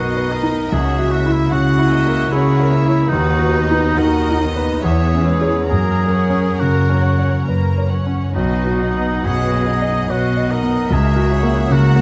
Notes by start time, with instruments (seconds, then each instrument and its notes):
Already playing: grand piano B1 F#2 D#4 F#4 A#4 B4, cello section B2, viola section D#4 F#4, oboe F#4, violin section D#5
0.16 grand piano B4
0.31 viola section B3 D#4, oboe A#4, violin section B4
0.43 grand piano D#4
0.70 grand piano C#2, cello section C#3, viola section C#4 F#4, oboe G#4, violin section E5 F#5
0.99 grand piano F#4
1.11 viola section A#3 E4, oboe F#4, violin section E5
1.26 grand piano E4
1.32 oboe E4
1.50 cello section C#3, grand piano C#3, viola section C#4 F#4, oboe F#4, violin section F#5
1.78 grand piano E4
1.89 viola section A#3 E4, violin section D#5 E5
2.06 grand piano A#4
2.28 cello section C#3, viola section C#4 F#4, oboe E4, violin section C#5 F#5
2.32 grand piano G#4
2.59 grand piano A#4
2.70 viola section A#3 E4, violin section E5
2.86 grand piano E4
3.08 cello section D#2, oboe D#4, viola section D#4 F#4, violin section B4 F#5
3.12 grand piano D#2
3.39 grand piano F#4
3.52 viola section B3 D#4, violin section D#5
3.71 grand piano D#4
3.97 cello section D#2, grand piano D#3, viola section D#4 F#4, oboe A#4, violin section D#5 F#5
4.31 grand piano D#4
4.40 viola section B3 D#4, violin section D#5
4.56 grand piano B4
4.81 cello section E2, grand piano E2, viola section E3 G#4, oboe G#4, violin section C#5 E5
5.15 grand piano C#4
5.23 viola section G#3 E4, violin section B4 C#5
5.41 grand piano G#4 C#5
5.67 cello section F#2, viola section A#3 A#4, oboe G#4, violin section A#4 A#5
5.71 grand piano F#2
6.04 grand piano A#4
6.12 viola section C#4 C#5, violin section F#5
6.30 grand piano C#4
6.58 cello section F#2, grand piano C#3, viola section A#3 A#4, oboe F#4, violin section A#5
6.90 grand piano C#4
7.01 viola section C#4 C#5, violin section F#5
7.19 grand piano C#5
7.45 cello section F#2, viola section A#3 A#4, grand piano B4, violin section A#5
7.78 grand piano C#5
7.89 viola section C#4 C#5, violin section F#5
8.07 grand piano C#4
8.33 grand piano B1, cello section B2, oboe D#4, viola section F#4 B4, violin section D#5
8.64 grand piano F#4
8.78 viola section D#4 D#5, violin section F#5
8.95 grand piano B3
9.24 grand piano F#2, cello section B2, viola section F#4 B4, oboe G#4, violin section D#5 F#5
9.54 grand piano B3
9.67 viola section D#4 D#5, violin section D#5 F#5
9.82 grand piano D#5
10.08 cello section B2, viola section F#4 B4, oboe F#4, grand piano C#5, violin section D#5
10.37 grand piano D#5
10.50 viola section D#4 D#5, oboe A#4, violin section F#5
10.63 grand piano B3
10.90 grand piano C#2, cello section C#2, viola section F#4 A#4, oboe G#4, violin section E5
11.16 grand piano F#4
11.32 viola section E4 C#5, violin section F#5
11.43 grand piano A#3
11.70 cello section C#2, grand piano C#3, oboe F#4, viola section F#4 A#4, violin section E5 F#5
11.96 grand piano A#3